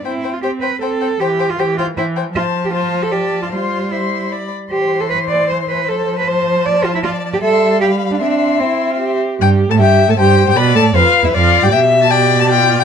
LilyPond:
<<
  \new Staff \with { instrumentName = "Violin" } { \time 3/4 \key c \major \tempo 4 = 154 g''8 g''8 g''8 g''8 g''8 g''8 | g''8 g''8 g''8 g''8 g''8 g''8 | a''4 a''4 a''4 | c'''4 c'''4 b''8 r8 |
c'''2. | a''2.~ | a''4 c'''4 b''4 | c'''2~ c'''8 r8 |
g''8. a''16 g''8. a''16 g''8. g''16 | b''8 a''8 f''8. e''16 f''8. g''16 | g''8. a''16 g''8. a''16 g''8. g''16 | }
  \new Staff \with { instrumentName = "Violin" } { \time 3/4 \key c \major c''8 c''8 c''8 c''8 c''8 c''8 | c''8 c''8 c''8 c''8 c''8 c''8 | c''4 c''4 d''4 | c''4 c''4 d''8 r8 |
c''2.~ | c''2. | d''4 e''4 f''4 | e''2~ e''8 r8 |
r4 e''4 c''4 | d''4 b'4 d''4 | e''4 d''2 | }
  \new Staff \with { instrumentName = "Cello" } { \time 3/4 \key c \major e'8. f'16 g'8 b'8 a'4 | g'8. f'16 g'8 f'8 e'8 r8 | f'8. g'16 f'8. a'16 g'8. f'16 | f'4 e'4 r4 |
g'8. a'16 b'8 d''8 c''8 b'8 | a'8. b'16 c''4 d''8 f'16 e'16 | f'8. g'16 a'4 g'8. d'16 | d'4 c'4. r8 |
g,8. a,16 g,8. a,16 g,8. g,16 | b,8 a,8 f,8. e,16 f,8. g,16 | b,2. | }
  \new Staff \with { instrumentName = "Viola" } { \time 3/4 \key c \major c'4 c'4 c'4 | e4 e4 e4 | f2. | g2~ g8 r8 |
e2. | f2.~ | f4 g2 | c'4 e'8. f'16 g'4 |
g'8. a'16 g'8. a'16 g'8. g'16 | b'8 a'8 f'8. e'16 f'8. g'16 | g'4 g'4 f'4 | }
>>